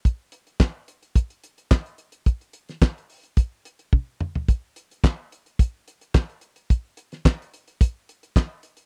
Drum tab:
HH |x-xx--xxxxxx-xxx|xxxx-xoxx-xx----|x-xx--xxx-xx-xxx|x-xx-xxxx-xx--xx|
CP |----x-------x---|----x-----------|----x-------x---|----x-------x---|
SD |----o-------o---|---oo-----------|----o-------o---|---oo-------o---|
T1 |----------------|------------o---|----------------|----------------|
T2 |----------------|--------------o-|----------------|----------------|
FT |----------------|---------------o|----------------|----------------|
BD |o---o---o---o---|o---o---o---o---|o---o---o---o---|o---o---o---o---|